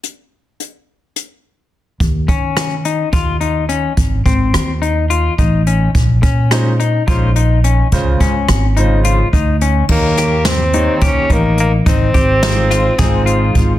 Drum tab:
CC |-------|-------|-------|-------|
HH |x-x-x--|xxxxxxx|xxxxxxx|xxxxxxx|
SD |-------|--r----|--r----|--r----|
BD |-------|oo--o--|oo---o-|oo--o--|

CC |-------|x------|-------|
HH |xxxxxxx|-xxxxxx|xxxxxxx|
SD |--r----|-oo----|--ooo--|
BD |oo---o-|o---oo-|oo--o-o|